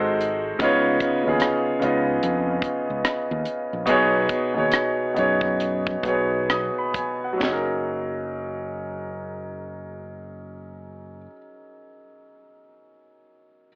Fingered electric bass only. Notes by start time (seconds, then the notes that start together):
Already playing: G#1
0.61 C#2
1.27 D#2
1.83 C#2
2.23 F2
2.90 C#2
3.06 muted fingered electric bass stroke
3.31 D#2
3.73 A#1
3.89 B1
4.58 D#2
5.18 F#2
6.05 B1
7.43 F#1